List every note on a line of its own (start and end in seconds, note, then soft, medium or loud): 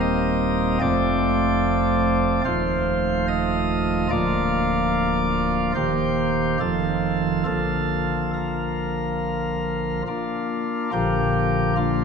0.00 0.78 D#1 medium
0.00 0.78 D#2 medium
0.00 0.78 G3 medium
0.00 0.78 A#3 medium
0.00 0.78 C4 medium
0.00 0.80 D#5 loud
0.80 2.41 F1 medium
0.80 2.41 F2 medium
0.80 2.41 F3 medium
0.80 2.41 A3 medium
0.80 2.41 C4 medium
0.80 2.41 D5 loud
2.45 4.07 D#1 medium
2.45 4.07 D#2 medium
2.45 4.07 F3 medium
2.45 4.07 A3 medium
2.45 4.07 F4 medium
2.45 3.26 C5 loud
3.28 4.09 D#5 loud
4.10 5.72 D1 medium
4.10 5.72 D2 medium
4.10 5.72 F3 medium
4.10 5.72 A#3 medium
4.10 5.72 F4 medium
4.10 5.72 D5 loud
5.75 6.57 D#1 medium
5.75 6.57 D#2 medium
5.75 6.57 D#3 soft
5.75 6.57 A#3 soft
5.75 6.57 G4 soft
5.75 6.57 C5 medium
6.60 7.44 F1 medium
6.60 7.44 F2 medium
6.60 7.44 D#3 soft
6.60 7.44 F3 soft
6.60 7.43 F4 soft
6.60 7.44 A4 medium
7.45 10.02 A#1 medium
7.45 10.02 A#2 medium
7.45 10.02 D3 soft
7.45 10.02 F3 soft
7.45 10.02 F4 soft
7.45 8.31 A4 medium
8.34 10.02 A#4 medium
10.07 10.90 A#3 medium
10.07 10.90 D4 medium
10.07 10.90 F4 medium
10.93 12.04 A#1 medium
10.93 12.04 A#2 medium
10.93 12.04 D3 medium
10.93 12.04 F3 medium
10.93 11.75 A#3 medium
10.93 11.73 G4 loud
11.76 12.04 A#3 medium
11.76 12.04 D4 medium
11.76 12.04 F4 medium